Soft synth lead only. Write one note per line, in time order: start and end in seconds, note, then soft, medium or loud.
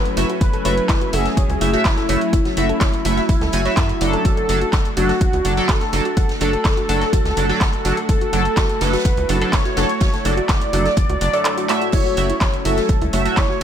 0.00 0.32 B4 loud
0.41 1.14 B4 loud
1.13 1.76 G#4 loud
1.85 2.48 E4 loud
2.57 4.16 E4 loud
4.25 4.88 A4 loud
4.97 5.71 F#4 loud
5.69 6.32 A4 loud
6.41 8.00 A4 loud
8.09 8.83 A4 loud
8.81 9.44 B4 loud
9.53 10.26 C#5 loud
10.25 11.84 D5 loud
11.93 12.56 C#5 loud
12.65 13.28 A4 loud
13.37 13.63 C#5 loud